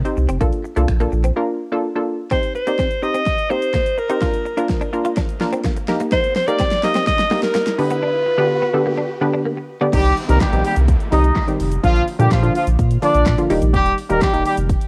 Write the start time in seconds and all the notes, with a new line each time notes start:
0.05 C4 D#4 G4 C5, closed hi-hat, shaker
0.17 C2, muted clean electric guitar stroke, shaker
0.29 F1 C4, closed hi-hat, shaker
0.40 A#1 A#3 D4 F4 A4, kick, closed hi-hat, shaker
0.53 closed hi-hat, shaker
0.64 muted clean electric guitar stroke, shaker
0.76 C2 A3 A#3 D4 F4 A4, closed hi-hat, shaker
0.88 A#1, finger snap, kick, closed hi-hat, shaker
1.00 A#3 D4 F4 A4, closed hi-hat, shaker
1.12 A#1, muted clean electric guitar stroke, shaker
1.24 C4, closed hi-hat, shaker
1.36 A#3 D4 F4 A#4
1.72 A#3 D4 F4 A4
1.95 A#3 D4 F4 A4
2.31 C4 D#4 G4 C5, kick, snare, closed hi-hat, riser, shaker
2.43 closed hi-hat, shaker
2.55 C5, muted clean electric guitar stroke, shaker
2.67 A#3 C4 D#4 G4 D5, closed hi-hat, shaker
2.79 C4, kick, snare, closed hi-hat, shaker
2.91 closed hi-hat, shaker
3.02 C4 D#4 G4 C5 D#5, muted clean electric guitar stroke, shaker
3.14 C4, closed hi-hat, shaker
3.26 kick, snare, closed hi-hat, shaker
3.38 closed hi-hat, shaker
3.50 A#3 C4 D#4 G4 C5, shaker
3.62 closed hi-hat, shaker
3.74 A#3, kick, snare, closed hi-hat, shaker
3.86 closed hi-hat, shaker
3.98 A#4, muted clean electric guitar stroke, shaker
4.10 C4 D#4 G4 C5, closed hi-hat, shaker
4.21 A#3 D4 F4 A#4, kick, snare, closed hi-hat, shaker
4.34 closed hi-hat, shaker
4.45 muted clean electric guitar stroke, shaker
4.57 A#3 D4 F4 A#4, closed hi-hat, shaker
4.69 kick, snare, closed hi-hat, shaker
4.81 D4, closed hi-hat, shaker
4.93 A#3 D4 F4 A#4, muted clean electric guitar stroke, shaker
5.05 F4, closed hi-hat, shaker
5.17 D4, kick, snare, closed hi-hat, shaker
5.29 closed hi-hat, shaker
5.40 A#3 D4 F4 A#4, muted clean electric guitar stroke, snare, shaker
5.52 C4, closed hi-hat, shaker
5.64 A#3, kick, snare, closed hi-hat, shaker
5.76 muted clean electric guitar stroke, closed hi-hat, shaker
5.88 A#3 D#4 G4 A#4, snare, shaker
6.00 A#3, closed hi-hat, shaker
6.12 D#4 C5, kick, snare, closed hi-hat, shaker
6.24 closed hi-hat, shaker
6.36 C5, muted clean electric guitar stroke, snare, open hi-hat, shaker
6.47 A#3 D#4 G4 A#4 D5, closed hi-hat, shaker
6.60 C4, kick, snare, clap, closed hi-hat, shaker
6.71 snare, closed hi-hat, shaker
6.83 A#3 D#4 G4 A#4 D#5, muted clean electric guitar stroke, snare, open hi-hat, shaker
6.95 C4, snare, closed hi-hat, shaker
7.07 D#5, kick, snare, closed hi-hat, shaker
7.19 snare, closed hi-hat, shaker
7.31 A#3 D#4 G4 A#4, snare, clap, open hi-hat, shaker
7.43 A#4, snare, closed hi-hat, shaker
7.55 A#3, snare, clap, closed hi-hat, shaker
7.67 snare, closed hi-hat, shaker
7.78 D3 B3 D4 G4 B4, muted clean electric guitar stroke, open hi-hat, shaker
7.91 B3, closed hi-hat, shaker
8.03 D4
8.26 muted clean electric guitar stroke
8.38 D3 B3 D4 G4 B4
8.62 B3
8.74 D3 B3 D4 G4 A4, muted clean electric guitar stroke
8.86 A#3
8.98 D4
9.21 D3 B3 D4 G4 B4, muted clean electric guitar stroke
9.34 D4
9.46 A#3
9.57 muted clean electric guitar stroke
9.81 D3 B3 D4 G4 D5
9.93 C2 D#3 G3 C4 D#4 G4, kick, closed hi-hat, crash, downlifter, shaker
10.05 closed hi-hat, shaker
10.17 open hi-hat, shaker
10.29 C2 D#3 G3 A#3 C4 D#4 G4 A#4, closed hi-hat, shaker
10.41 G3 G4, kick, snare, clap, closed hi-hat, shaker
10.52 A#1 D#3 G3 C4 D#4 G4, closed hi-hat, shaker
10.65 G3 G4, open hi-hat, shaker
10.76 C2, closed hi-hat, shaker
10.88 kick, closed hi-hat, shaker
11.00 closed hi-hat, shaker
11.12 C2 D#3 G3 C4 D#4 G4 D#5, clap, open hi-hat, shaker
11.24 closed hi-hat, shaker
11.36 kick, snare, clap, closed hi-hat, shaker
11.48 D#3 G3 C4 D#4 G4, closed hi-hat, shaker
11.60 F1, open hi-hat, shaker
11.72 closed hi-hat, shaker
11.83 A#1 D3 F3 A#3 D4 F4, kick, closed hi-hat, shaker
11.95 closed hi-hat, shaker
12.08 open hi-hat, shaker
12.19 A#2 D3 F3 G3 A#3 D4 G4, closed hi-hat, shaker
12.31 A#2 F3 F4, kick, snare, clap, closed hi-hat, shaker
12.42 D3 F3 A#3 D4 F4, closed hi-hat, shaker
12.55 F3 F4, open hi-hat, shaker
12.67 A#1, closed hi-hat, shaker
12.79 A#2, kick, closed hi-hat, shaker
12.91 closed hi-hat, shaker
13.02 D3 F3 A#3 D4 F4 D5, clap, open hi-hat, shaker
13.14 A#1, closed hi-hat, shaker
13.26 A#2, kick, snare, clap, closed hi-hat, shaker
13.38 D3 F3 A#3 D4 F4, closed hi-hat, shaker
13.50 D#1 D#3 G3 A#3 D#4 G4, open hi-hat, shaker
13.62 A#1, closed hi-hat, shaker
13.74 D#1 G3 G4, kick, closed hi-hat, shaker
13.86 closed hi-hat, shaker
13.98 open hi-hat, shaker
14.10 D#1 D#3 G3 A#3 D#4 G4 A#4, closed hi-hat, shaker
14.22 G3 G4, kick, snare, clap, closed hi-hat, shaker
14.33 D#1 D#3 G3 A#3 D#4 G4, closed hi-hat, shaker
14.45 G3 G4, open hi-hat, shaker
14.57 F1, closed hi-hat, shaker
14.69 kick, closed hi-hat, shaker
14.81 closed hi-hat, shaker